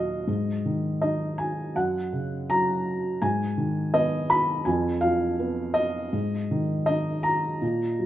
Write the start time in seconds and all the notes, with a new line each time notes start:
Already playing: D#2 A#2 F#3 D#5 F5 F#5
0.28 G#2
0.65 D#3
1.02 D#4 D#5
1.38 G#5
1.75 F#2 F#5
2.13 C#3
2.50 F#3 A#5
3.22 G#2 G#5
3.57 D#3
3.94 B3 D#5
4.30 B5
4.65 F2 G#5
5.01 F3 F5
5.39 B3
5.74 D#5
6.13 G#2
6.51 D#3
6.86 D#4 D#5
7.23 A#5
7.62 A#2
7.99 F#3